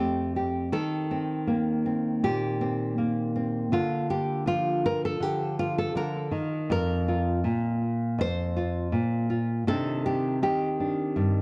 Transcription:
Already playing: F2 A3 C4
0.00 G4
0.36 G4
0.72 D#3 A4
1.11 C4
1.47 A#3
1.86 C4
2.24 A#2 G4
2.61 C4
2.98 A#3
3.36 C4
3.72 D3 F4
4.10 G4
4.46 F3 F4
4.86 A#4
5.05 A4
5.20 D3 G4
5.59 F4
5.79 A4
5.95 D3 A#4
6.31 D#3
6.70 F2 A#4
7.08 F4
7.44 A#2
8.18 F2 C5
8.56 F4
8.92 A#2
9.30 F4
9.67 C3 D#3 C4 D4 A4
10.06 G4
10.42 D#3 G4
10.80 D4
11.16 G2

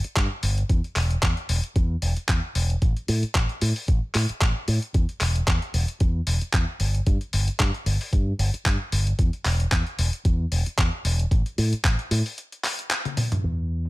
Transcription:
0.04 muted fingered electric bass stroke, closed hi-hat
0.16 G2, kick, clap, closed hi-hat
0.43 G1, open hi-hat
0.58 closed hi-hat
0.69 E2, kick, closed hi-hat
0.84 closed hi-hat
0.96 E1, clap, open hi-hat
1.11 closed hi-hat
1.23 E2, kick, clap, closed hi-hat
1.37 closed hi-hat
1.49 E1, open hi-hat
1.64 closed hi-hat
1.76 E2, kick, closed hi-hat
2.02 E1, open hi-hat
2.17 muted fingered electric bass stroke, closed hi-hat
2.29 E2, kick, clap, closed hi-hat
2.55 E1, open hi-hat
2.70 closed hi-hat
2.82 A1, kick, closed hi-hat
2.97 closed hi-hat
3.08 A2, open hi-hat
3.23 muted fingered electric bass stroke, closed hi-hat
3.35 A1, kick, clap, closed hi-hat
3.49 closed hi-hat
3.61 A2, open hi-hat
3.76 open hi-hat
3.88 A1, kick, closed hi-hat
4.15 A2, clap, open hi-hat
4.29 muted fingered electric bass stroke, closed hi-hat
4.41 A1, kick, clap, closed hi-hat
4.68 A2, open hi-hat
4.82 closed hi-hat
4.94 E2, kick, closed hi-hat
5.09 closed hi-hat
5.21 E1, clap, open hi-hat
5.36 closed hi-hat
5.47 E2, kick, clap, closed hi-hat
5.62 closed hi-hat
5.74 E1, open hi-hat
5.88 closed hi-hat
6.00 E2, kick, closed hi-hat
6.27 E1, open hi-hat
6.41 muted fingered electric bass stroke, closed hi-hat
6.53 E2, kick, clap, closed hi-hat
6.80 G1, open hi-hat
6.95 closed hi-hat
7.06 G2, kick, closed hi-hat
7.21 closed hi-hat
7.33 G1, open hi-hat
7.48 muted fingered electric bass stroke, closed hi-hat
7.60 G2, kick, clap, closed hi-hat
7.74 closed hi-hat
7.86 G1, open hi-hat
8.01 open hi-hat
8.13 G2, kick, closed hi-hat
8.39 G1, open hi-hat
8.54 muted fingered electric bass stroke, closed hi-hat
8.66 G2, kick, clap, closed hi-hat
8.92 G1, open hi-hat
9.07 closed hi-hat
9.19 E2, kick, closed hi-hat
9.33 closed hi-hat
9.45 E1, clap, open hi-hat
9.60 closed hi-hat
9.72 E2, kick, clap, closed hi-hat
9.87 closed hi-hat
9.99 E1, open hi-hat
10.13 closed hi-hat
10.25 E2, kick, closed hi-hat
10.52 E1, open hi-hat
10.66 muted fingered electric bass stroke, closed hi-hat
10.78 E2, kick, clap, closed hi-hat
11.05 E1, open hi-hat
11.19 closed hi-hat
11.31 A1, kick, closed hi-hat
11.46 closed hi-hat
11.58 A2, open hi-hat
11.73 muted fingered electric bass stroke, closed hi-hat
11.84 A1, kick, clap, closed hi-hat
11.99 closed hi-hat
12.11 A2, open hi-hat
12.26 open hi-hat
12.38 closed hi-hat
12.52 closed hi-hat
12.64 clap, open hi-hat
12.79 closed hi-hat
12.91 clap, closed hi-hat
13.05 closed hi-hat, high tom
13.17 open hi-hat, mid tom
13.32 closed hi-hat, mid tom
13.44 E2, closed hi-hat
13.85 closed hi-hat

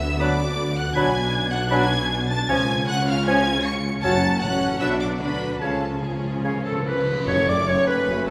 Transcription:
Already playing: D2 D3 F#3 B3 F#4 E5 E6
0.20 F#3 D4 B4 D5 B5 D6
0.76 F#5 F#6
0.95 B1 B2 F#3 D4 B4 G#5 B5 G#6
1.51 F#5 F#6
1.71 F#3 D4 B4 G#5 B5 G#6
2.29 A5 A6
2.48 C#2 C#3 F3 C#4 F4 C#5 G#5 G#6
2.87 F#5 F#6
3.07 F5 F6
3.26 F3 C#4 C#5 G#5 G#6
3.65 C#6 C#7
4.03 F#1 F#2 F#3 C#4 F#4 C#5 F#5 A5 A6
4.41 A1 A2 F#3 C#4 F#4 F#5 F#6
4.80 B1 B2 F#3 D4 F#4 B4 E5 F#5 E6
5.00 D5 D6
5.19 D2 D3 F#3 D4 F#4 B4 B5
5.60 C#2 C#3 F3 C#4 F4 A4 C#5 F5 A5
5.70 C#3
5.79 C#3
5.86 C#3
5.94 C#3
6.01 C#3 F3 C#4 F4 G#4 G#5
6.10 C#3
6.17 C#3
6.25 C#3
6.33 C#3
6.41 C#3 C#4 F5
6.45 C#5
6.49 C#3
6.57 C#3
6.64 C#3 A4 A5
6.72 C#3
6.80 C#3
6.86 C#3 B4 B5
6.96 C#3
7.04 C#3
7.12 C#3
7.20 C#3
7.26 F#1 F#2 A3 C#4 C#5 C#6, tam-tam
7.47 F#1 F#2 D5 D6
7.67 F#1 F#2 A3 C#4 C#5 C#6
7.87 F#1 F#2 B4 B5
8.06 F#1 F#2 F#4
8.26 F#1 A4 A5

